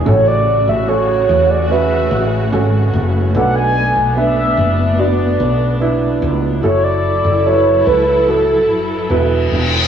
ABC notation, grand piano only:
X:1
M:4/4
L:1/8
Q:1/4=73
K:A
V:1 name="Grand piano"
[C,FA]2 [CFA]2 [CFB]2 [CFA]2 | [B,DA]2 [B,DB]2 [B,DF]2 [B,DE]2 | [EFA]2 [EFAB]2 [EFA]2 [EFB]2 |]
V:2 name="Grand piano" clef=bass
A,,3 z4 z | B,,3 z4 z | z8 |]